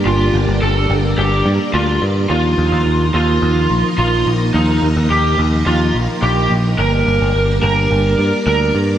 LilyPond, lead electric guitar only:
\new Staff \with { instrumentName = "Lead electric guitar" } { \time 4/4 \key g \minor \tempo 4 = 107 f'8 r8 a'8 r8 g'8 r8 f'8 r8 | f'4. f'4. f'8 r8 | ees'8 r8 g'8 r8 f'8 r8 g'8 r8 | bes'4. bes'4. bes'8 r8 | }